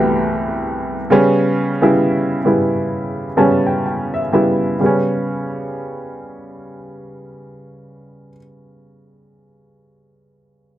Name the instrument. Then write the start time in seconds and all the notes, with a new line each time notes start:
upright piano
Already playing: C2 E3 A3 B3 E4 F#4 G4
1.10 C#3 G3 B3 C#4
1.82 C#3 G3 B3 E4
2.45 C#3 G3 B3 E4
3.37 C#3 G3 B3 C#4 A5
3.67 G5
3.86 G5
4.14 E5
4.32 C#3 G3 B3 E4 E5
4.79 C#3 G3
4.84 B3 C#4